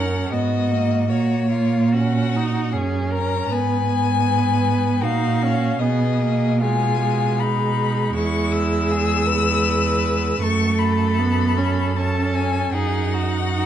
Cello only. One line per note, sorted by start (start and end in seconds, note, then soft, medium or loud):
0.00 0.29 F#2 medium
0.33 1.12 G#2 soft
1.10 2.75 A#2 medium
2.73 3.50 F#2 soft
3.51 5.04 G#2 medium
5.02 5.79 A#2 medium
5.80 8.11 B2 medium
8.15 10.38 E2 medium
10.42 12.70 F#2 medium
12.74 13.66 F#2 medium